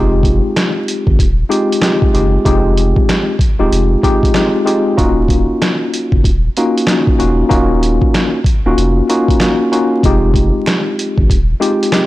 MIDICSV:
0, 0, Header, 1, 4, 480
1, 0, Start_track
1, 0, Tempo, 631579
1, 1868, Time_signature, 4, 2, 24, 8
1, 9169, End_track
2, 0, Start_track
2, 0, Title_t, "Tine electric piano"
2, 0, Program_c, 0, 4
2, 0, Note_on_c, 0, 56, 98
2, 0, Note_on_c, 0, 60, 87
2, 0, Note_on_c, 0, 63, 90
2, 0, Note_on_c, 0, 65, 84
2, 0, Note_on_c, 0, 67, 103
2, 954, Note_off_c, 0, 56, 0
2, 955, Note_off_c, 0, 60, 0
2, 956, Note_off_c, 0, 63, 0
2, 957, Note_off_c, 0, 65, 0
2, 958, Note_off_c, 0, 67, 0
2, 1133, Note_on_c, 0, 56, 94
2, 1136, Note_on_c, 0, 60, 78
2, 1137, Note_on_c, 0, 63, 80
2, 1140, Note_on_c, 0, 65, 87
2, 1142, Note_on_c, 0, 67, 108
2, 1366, Note_off_c, 0, 56, 0
2, 1368, Note_off_c, 0, 60, 0
2, 1368, Note_off_c, 0, 63, 0
2, 1370, Note_off_c, 0, 65, 0
2, 1371, Note_off_c, 0, 67, 0
2, 1382, Note_on_c, 0, 56, 73
2, 1383, Note_on_c, 0, 60, 68
2, 1386, Note_on_c, 0, 63, 67
2, 1388, Note_on_c, 0, 65, 66
2, 1390, Note_on_c, 0, 67, 85
2, 1611, Note_off_c, 0, 56, 0
2, 1611, Note_off_c, 0, 60, 0
2, 1613, Note_off_c, 0, 63, 0
2, 1614, Note_off_c, 0, 65, 0
2, 1615, Note_off_c, 0, 67, 0
2, 1624, Note_on_c, 0, 56, 70
2, 1625, Note_on_c, 0, 60, 67
2, 1627, Note_on_c, 0, 63, 62
2, 1629, Note_on_c, 0, 65, 69
2, 1632, Note_on_c, 0, 67, 81
2, 1852, Note_off_c, 0, 56, 0
2, 1852, Note_off_c, 0, 60, 0
2, 1853, Note_off_c, 0, 63, 0
2, 1854, Note_off_c, 0, 65, 0
2, 1856, Note_off_c, 0, 67, 0
2, 1861, Note_on_c, 0, 56, 90
2, 1863, Note_on_c, 0, 60, 88
2, 1865, Note_on_c, 0, 63, 87
2, 1867, Note_on_c, 0, 65, 81
2, 1869, Note_on_c, 0, 67, 105
2, 2542, Note_off_c, 0, 56, 0
2, 2543, Note_off_c, 0, 60, 0
2, 2544, Note_off_c, 0, 63, 0
2, 2545, Note_off_c, 0, 65, 0
2, 2546, Note_off_c, 0, 67, 0
2, 2729, Note_on_c, 0, 56, 100
2, 2731, Note_on_c, 0, 60, 87
2, 2733, Note_on_c, 0, 63, 87
2, 2734, Note_on_c, 0, 65, 87
2, 2737, Note_on_c, 0, 67, 104
2, 3042, Note_off_c, 0, 56, 0
2, 3043, Note_off_c, 0, 60, 0
2, 3044, Note_off_c, 0, 63, 0
2, 3044, Note_off_c, 0, 65, 0
2, 3046, Note_off_c, 0, 67, 0
2, 3061, Note_on_c, 0, 56, 84
2, 3064, Note_on_c, 0, 60, 81
2, 3065, Note_on_c, 0, 63, 86
2, 3067, Note_on_c, 0, 65, 84
2, 3070, Note_on_c, 0, 67, 110
2, 3290, Note_off_c, 0, 56, 0
2, 3292, Note_off_c, 0, 60, 0
2, 3292, Note_off_c, 0, 63, 0
2, 3293, Note_off_c, 0, 65, 0
2, 3295, Note_off_c, 0, 67, 0
2, 3302, Note_on_c, 0, 56, 73
2, 3304, Note_on_c, 0, 60, 72
2, 3306, Note_on_c, 0, 63, 66
2, 3308, Note_on_c, 0, 65, 69
2, 3310, Note_on_c, 0, 67, 81
2, 3526, Note_off_c, 0, 56, 0
2, 3528, Note_off_c, 0, 60, 0
2, 3530, Note_off_c, 0, 63, 0
2, 3532, Note_off_c, 0, 65, 0
2, 3535, Note_off_c, 0, 67, 0
2, 3535, Note_on_c, 0, 56, 80
2, 3537, Note_on_c, 0, 60, 72
2, 3539, Note_on_c, 0, 63, 72
2, 3541, Note_on_c, 0, 65, 74
2, 3543, Note_on_c, 0, 67, 86
2, 3767, Note_off_c, 0, 56, 0
2, 3768, Note_off_c, 0, 60, 0
2, 3769, Note_off_c, 0, 63, 0
2, 3770, Note_off_c, 0, 65, 0
2, 3771, Note_off_c, 0, 67, 0
2, 3778, Note_on_c, 0, 58, 95
2, 3780, Note_on_c, 0, 61, 86
2, 3781, Note_on_c, 0, 63, 86
2, 3784, Note_on_c, 0, 65, 92
2, 3786, Note_on_c, 0, 66, 108
2, 4785, Note_off_c, 0, 58, 0
2, 4786, Note_off_c, 0, 61, 0
2, 4787, Note_off_c, 0, 63, 0
2, 4788, Note_off_c, 0, 65, 0
2, 4789, Note_off_c, 0, 66, 0
2, 4995, Note_on_c, 0, 58, 96
2, 4997, Note_on_c, 0, 61, 81
2, 4999, Note_on_c, 0, 63, 85
2, 5001, Note_on_c, 0, 65, 83
2, 5003, Note_on_c, 0, 66, 100
2, 5217, Note_off_c, 0, 58, 0
2, 5218, Note_off_c, 0, 61, 0
2, 5219, Note_off_c, 0, 63, 0
2, 5220, Note_off_c, 0, 65, 0
2, 5221, Note_off_c, 0, 66, 0
2, 5245, Note_on_c, 0, 58, 71
2, 5247, Note_on_c, 0, 61, 66
2, 5248, Note_on_c, 0, 63, 73
2, 5251, Note_on_c, 0, 65, 66
2, 5253, Note_on_c, 0, 66, 81
2, 5452, Note_off_c, 0, 58, 0
2, 5453, Note_off_c, 0, 61, 0
2, 5455, Note_off_c, 0, 63, 0
2, 5457, Note_off_c, 0, 65, 0
2, 5460, Note_off_c, 0, 66, 0
2, 5461, Note_on_c, 0, 58, 80
2, 5463, Note_on_c, 0, 61, 70
2, 5464, Note_on_c, 0, 63, 68
2, 5467, Note_on_c, 0, 65, 74
2, 5469, Note_on_c, 0, 66, 88
2, 5681, Note_off_c, 0, 58, 0
2, 5683, Note_off_c, 0, 61, 0
2, 5685, Note_off_c, 0, 63, 0
2, 5686, Note_off_c, 0, 65, 0
2, 5690, Note_off_c, 0, 66, 0
2, 5690, Note_on_c, 0, 58, 93
2, 5692, Note_on_c, 0, 61, 86
2, 5694, Note_on_c, 0, 63, 88
2, 5695, Note_on_c, 0, 65, 86
2, 5699, Note_on_c, 0, 66, 96
2, 6376, Note_off_c, 0, 58, 0
2, 6377, Note_off_c, 0, 61, 0
2, 6378, Note_off_c, 0, 63, 0
2, 6379, Note_off_c, 0, 65, 0
2, 6381, Note_off_c, 0, 66, 0
2, 6580, Note_on_c, 0, 58, 89
2, 6582, Note_on_c, 0, 61, 86
2, 6583, Note_on_c, 0, 63, 82
2, 6586, Note_on_c, 0, 65, 90
2, 6588, Note_on_c, 0, 66, 107
2, 6887, Note_off_c, 0, 58, 0
2, 6888, Note_off_c, 0, 61, 0
2, 6889, Note_off_c, 0, 63, 0
2, 6890, Note_off_c, 0, 65, 0
2, 6891, Note_off_c, 0, 66, 0
2, 6909, Note_on_c, 0, 58, 90
2, 6911, Note_on_c, 0, 61, 82
2, 6912, Note_on_c, 0, 63, 85
2, 6915, Note_on_c, 0, 65, 90
2, 6917, Note_on_c, 0, 66, 100
2, 7134, Note_off_c, 0, 58, 0
2, 7135, Note_off_c, 0, 61, 0
2, 7136, Note_off_c, 0, 63, 0
2, 7137, Note_off_c, 0, 65, 0
2, 7139, Note_off_c, 0, 66, 0
2, 7146, Note_on_c, 0, 58, 69
2, 7147, Note_on_c, 0, 61, 65
2, 7150, Note_on_c, 0, 63, 63
2, 7152, Note_on_c, 0, 65, 58
2, 7153, Note_on_c, 0, 66, 81
2, 7373, Note_off_c, 0, 58, 0
2, 7374, Note_off_c, 0, 61, 0
2, 7375, Note_off_c, 0, 63, 0
2, 7376, Note_off_c, 0, 65, 0
2, 7376, Note_off_c, 0, 66, 0
2, 7384, Note_on_c, 0, 58, 72
2, 7386, Note_on_c, 0, 61, 76
2, 7388, Note_on_c, 0, 63, 76
2, 7389, Note_on_c, 0, 65, 72
2, 7391, Note_on_c, 0, 66, 88
2, 7612, Note_off_c, 0, 58, 0
2, 7613, Note_off_c, 0, 61, 0
2, 7614, Note_off_c, 0, 63, 0
2, 7615, Note_off_c, 0, 65, 0
2, 7615, Note_off_c, 0, 66, 0
2, 7636, Note_on_c, 0, 56, 100
2, 7638, Note_on_c, 0, 60, 87
2, 7640, Note_on_c, 0, 63, 90
2, 7642, Note_on_c, 0, 65, 82
2, 7644, Note_on_c, 0, 67, 106
2, 8635, Note_off_c, 0, 56, 0
2, 8635, Note_off_c, 0, 60, 0
2, 8636, Note_off_c, 0, 63, 0
2, 8637, Note_off_c, 0, 65, 0
2, 8638, Note_off_c, 0, 67, 0
2, 8816, Note_on_c, 0, 56, 91
2, 8818, Note_on_c, 0, 60, 81
2, 8820, Note_on_c, 0, 63, 81
2, 8822, Note_on_c, 0, 65, 85
2, 8825, Note_on_c, 0, 67, 108
2, 9048, Note_off_c, 0, 56, 0
2, 9049, Note_off_c, 0, 60, 0
2, 9050, Note_off_c, 0, 63, 0
2, 9051, Note_off_c, 0, 65, 0
2, 9052, Note_off_c, 0, 67, 0
2, 9064, Note_on_c, 0, 56, 75
2, 9067, Note_on_c, 0, 60, 71
2, 9068, Note_on_c, 0, 63, 66
2, 9071, Note_on_c, 0, 65, 67
2, 9073, Note_on_c, 0, 67, 84
2, 9169, Note_off_c, 0, 56, 0
2, 9169, Note_off_c, 0, 60, 0
2, 9169, Note_off_c, 0, 63, 0
2, 9169, Note_off_c, 0, 65, 0
2, 9169, Note_off_c, 0, 67, 0
2, 9169, End_track
3, 0, Start_track
3, 0, Title_t, "Sub bass"
3, 0, Program_c, 1, 38
3, 0, Note_on_c, 1, 29, 110
3, 310, Note_off_c, 1, 29, 0
3, 813, Note_on_c, 1, 32, 90
3, 883, Note_off_c, 1, 32, 0
3, 905, Note_on_c, 1, 27, 99
3, 1088, Note_off_c, 1, 27, 0
3, 1626, Note_on_c, 1, 30, 84
3, 1808, Note_off_c, 1, 30, 0
3, 1865, Note_on_c, 1, 29, 107
3, 2230, Note_off_c, 1, 29, 0
3, 2737, Note_on_c, 1, 27, 87
3, 2805, Note_off_c, 1, 27, 0
3, 2827, Note_on_c, 1, 29, 96
3, 3009, Note_off_c, 1, 29, 0
3, 3786, Note_on_c, 1, 27, 102
3, 4151, Note_off_c, 1, 27, 0
3, 4652, Note_on_c, 1, 30, 88
3, 4722, Note_off_c, 1, 30, 0
3, 4745, Note_on_c, 1, 27, 94
3, 4928, Note_off_c, 1, 27, 0
3, 5468, Note_on_c, 1, 28, 83
3, 5650, Note_off_c, 1, 28, 0
3, 5705, Note_on_c, 1, 27, 116
3, 6070, Note_off_c, 1, 27, 0
3, 6579, Note_on_c, 1, 27, 90
3, 6646, Note_off_c, 1, 27, 0
3, 6669, Note_on_c, 1, 29, 106
3, 6850, Note_off_c, 1, 29, 0
3, 7626, Note_on_c, 1, 29, 109
3, 7990, Note_off_c, 1, 29, 0
3, 8493, Note_on_c, 1, 32, 88
3, 8563, Note_off_c, 1, 32, 0
3, 8586, Note_on_c, 1, 27, 100
3, 8769, Note_off_c, 1, 27, 0
3, 9169, End_track
4, 0, Start_track
4, 0, Title_t, "Drums"
4, 176, Note_on_c, 9, 36, 91
4, 188, Note_on_c, 9, 42, 67
4, 252, Note_off_c, 9, 36, 0
4, 264, Note_off_c, 9, 42, 0
4, 428, Note_on_c, 9, 40, 95
4, 430, Note_on_c, 9, 38, 116
4, 432, Note_on_c, 9, 42, 90
4, 504, Note_off_c, 9, 40, 0
4, 506, Note_off_c, 9, 38, 0
4, 508, Note_off_c, 9, 42, 0
4, 671, Note_on_c, 9, 42, 71
4, 747, Note_off_c, 9, 42, 0
4, 812, Note_on_c, 9, 36, 86
4, 888, Note_off_c, 9, 36, 0
4, 905, Note_on_c, 9, 36, 86
4, 911, Note_on_c, 9, 42, 78
4, 981, Note_off_c, 9, 36, 0
4, 987, Note_off_c, 9, 42, 0
4, 1152, Note_on_c, 9, 42, 72
4, 1228, Note_off_c, 9, 42, 0
4, 1310, Note_on_c, 9, 42, 60
4, 1379, Note_on_c, 9, 40, 90
4, 1381, Note_on_c, 9, 38, 114
4, 1386, Note_off_c, 9, 42, 0
4, 1391, Note_on_c, 9, 42, 103
4, 1455, Note_off_c, 9, 40, 0
4, 1457, Note_off_c, 9, 38, 0
4, 1467, Note_off_c, 9, 42, 0
4, 1536, Note_on_c, 9, 36, 93
4, 1612, Note_off_c, 9, 36, 0
4, 1631, Note_on_c, 9, 42, 56
4, 1707, Note_off_c, 9, 42, 0
4, 1865, Note_on_c, 9, 36, 109
4, 1869, Note_on_c, 9, 42, 103
4, 1941, Note_off_c, 9, 36, 0
4, 1945, Note_off_c, 9, 42, 0
4, 2109, Note_on_c, 9, 42, 65
4, 2185, Note_off_c, 9, 42, 0
4, 2252, Note_on_c, 9, 36, 97
4, 2328, Note_off_c, 9, 36, 0
4, 2348, Note_on_c, 9, 40, 96
4, 2350, Note_on_c, 9, 38, 118
4, 2351, Note_on_c, 9, 42, 87
4, 2424, Note_off_c, 9, 40, 0
4, 2426, Note_off_c, 9, 38, 0
4, 2427, Note_off_c, 9, 42, 0
4, 2577, Note_on_c, 9, 36, 96
4, 2590, Note_on_c, 9, 42, 71
4, 2653, Note_off_c, 9, 36, 0
4, 2666, Note_off_c, 9, 42, 0
4, 2831, Note_on_c, 9, 42, 81
4, 2907, Note_off_c, 9, 42, 0
4, 3065, Note_on_c, 9, 36, 86
4, 3071, Note_on_c, 9, 42, 72
4, 3141, Note_off_c, 9, 36, 0
4, 3147, Note_off_c, 9, 42, 0
4, 3215, Note_on_c, 9, 36, 88
4, 3229, Note_on_c, 9, 42, 59
4, 3291, Note_off_c, 9, 36, 0
4, 3299, Note_on_c, 9, 40, 94
4, 3301, Note_on_c, 9, 38, 114
4, 3305, Note_off_c, 9, 42, 0
4, 3311, Note_on_c, 9, 42, 100
4, 3375, Note_off_c, 9, 40, 0
4, 3377, Note_off_c, 9, 38, 0
4, 3387, Note_off_c, 9, 42, 0
4, 3552, Note_on_c, 9, 42, 57
4, 3628, Note_off_c, 9, 42, 0
4, 3786, Note_on_c, 9, 36, 105
4, 3789, Note_on_c, 9, 42, 103
4, 3862, Note_off_c, 9, 36, 0
4, 3865, Note_off_c, 9, 42, 0
4, 4016, Note_on_c, 9, 36, 92
4, 4029, Note_on_c, 9, 42, 65
4, 4092, Note_off_c, 9, 36, 0
4, 4105, Note_off_c, 9, 42, 0
4, 4269, Note_on_c, 9, 40, 97
4, 4270, Note_on_c, 9, 38, 114
4, 4272, Note_on_c, 9, 42, 91
4, 4345, Note_off_c, 9, 40, 0
4, 4346, Note_off_c, 9, 38, 0
4, 4348, Note_off_c, 9, 42, 0
4, 4511, Note_on_c, 9, 42, 69
4, 4587, Note_off_c, 9, 42, 0
4, 4652, Note_on_c, 9, 36, 84
4, 4728, Note_off_c, 9, 36, 0
4, 4744, Note_on_c, 9, 36, 85
4, 4751, Note_on_c, 9, 42, 79
4, 4820, Note_off_c, 9, 36, 0
4, 4827, Note_off_c, 9, 42, 0
4, 4991, Note_on_c, 9, 42, 70
4, 5067, Note_off_c, 9, 42, 0
4, 5150, Note_on_c, 9, 42, 62
4, 5219, Note_on_c, 9, 40, 89
4, 5220, Note_on_c, 9, 38, 117
4, 5226, Note_off_c, 9, 42, 0
4, 5231, Note_on_c, 9, 42, 103
4, 5295, Note_off_c, 9, 40, 0
4, 5296, Note_off_c, 9, 38, 0
4, 5307, Note_off_c, 9, 42, 0
4, 5375, Note_on_c, 9, 36, 96
4, 5451, Note_off_c, 9, 36, 0
4, 5470, Note_on_c, 9, 42, 58
4, 5546, Note_off_c, 9, 42, 0
4, 5705, Note_on_c, 9, 36, 105
4, 5708, Note_on_c, 9, 42, 101
4, 5781, Note_off_c, 9, 36, 0
4, 5784, Note_off_c, 9, 42, 0
4, 5950, Note_on_c, 9, 42, 68
4, 6026, Note_off_c, 9, 42, 0
4, 6092, Note_on_c, 9, 36, 100
4, 6168, Note_off_c, 9, 36, 0
4, 6189, Note_on_c, 9, 40, 97
4, 6190, Note_on_c, 9, 38, 117
4, 6192, Note_on_c, 9, 42, 91
4, 6265, Note_off_c, 9, 40, 0
4, 6266, Note_off_c, 9, 38, 0
4, 6268, Note_off_c, 9, 42, 0
4, 6418, Note_on_c, 9, 36, 97
4, 6431, Note_on_c, 9, 42, 70
4, 6494, Note_off_c, 9, 36, 0
4, 6507, Note_off_c, 9, 42, 0
4, 6672, Note_on_c, 9, 42, 76
4, 6748, Note_off_c, 9, 42, 0
4, 6913, Note_on_c, 9, 42, 74
4, 6989, Note_off_c, 9, 42, 0
4, 7056, Note_on_c, 9, 36, 91
4, 7071, Note_on_c, 9, 42, 62
4, 7132, Note_off_c, 9, 36, 0
4, 7142, Note_on_c, 9, 40, 91
4, 7144, Note_on_c, 9, 38, 111
4, 7147, Note_off_c, 9, 42, 0
4, 7154, Note_on_c, 9, 42, 104
4, 7218, Note_off_c, 9, 40, 0
4, 7220, Note_off_c, 9, 38, 0
4, 7230, Note_off_c, 9, 42, 0
4, 7393, Note_on_c, 9, 42, 56
4, 7469, Note_off_c, 9, 42, 0
4, 7626, Note_on_c, 9, 36, 108
4, 7630, Note_on_c, 9, 42, 102
4, 7702, Note_off_c, 9, 36, 0
4, 7706, Note_off_c, 9, 42, 0
4, 7857, Note_on_c, 9, 36, 93
4, 7871, Note_on_c, 9, 42, 69
4, 7933, Note_off_c, 9, 36, 0
4, 7947, Note_off_c, 9, 42, 0
4, 8104, Note_on_c, 9, 26, 71
4, 8110, Note_on_c, 9, 40, 93
4, 8112, Note_on_c, 9, 38, 116
4, 8113, Note_on_c, 9, 42, 89
4, 8180, Note_off_c, 9, 26, 0
4, 8186, Note_off_c, 9, 40, 0
4, 8188, Note_off_c, 9, 38, 0
4, 8189, Note_off_c, 9, 42, 0
4, 8353, Note_on_c, 9, 42, 69
4, 8429, Note_off_c, 9, 42, 0
4, 8494, Note_on_c, 9, 36, 87
4, 8570, Note_off_c, 9, 36, 0
4, 8586, Note_on_c, 9, 36, 87
4, 8593, Note_on_c, 9, 42, 78
4, 8662, Note_off_c, 9, 36, 0
4, 8669, Note_off_c, 9, 42, 0
4, 8833, Note_on_c, 9, 42, 71
4, 8909, Note_off_c, 9, 42, 0
4, 8989, Note_on_c, 9, 42, 60
4, 9060, Note_on_c, 9, 40, 90
4, 9062, Note_on_c, 9, 38, 114
4, 9065, Note_off_c, 9, 42, 0
4, 9070, Note_on_c, 9, 26, 68
4, 9072, Note_on_c, 9, 42, 104
4, 9136, Note_off_c, 9, 40, 0
4, 9138, Note_off_c, 9, 38, 0
4, 9146, Note_off_c, 9, 26, 0
4, 9148, Note_off_c, 9, 42, 0
4, 9169, End_track
0, 0, End_of_file